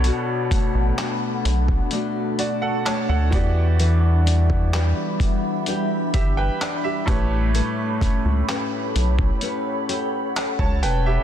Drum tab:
HH |x-x-x-x-x-x-x-x-|x-x-x-x-x-x-x-x-|x-x-x-x-x-x-x-x-|
CP |----x-------x---|----x-------x---|----x-------x---|
BD |--o----o------o-|---o--o---o---o-|--o----o-----o--|